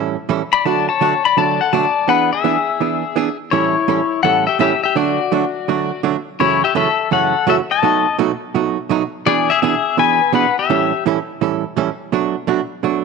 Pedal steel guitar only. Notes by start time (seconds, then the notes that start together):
0.53 D5 B5
0.65 D5 A5
0.89 C#5 A5
1.25 D5 B5
1.38 D5 A5
1.61 A4 F#5
1.73 D5 A5
2.09 B4 F#5
2.33 G#4 E5
3.51 E4 C#5
4.23 A4 F#5
4.47 G4 E5
4.61 G4 E5
4.83 G4 E5
4.97 F#4 D5
6.40 E4 C#5
6.64 G4 E5
6.76 A4 E5
7.12 A4 F#5
7.49 A4 E5
7.71 D#5 A5
9.27 G#4 D5
9.50 G#4 E5
9.62 G#4 E5
9.99 B4 G#5
10.35 B4 F#5
10.59 G4 E5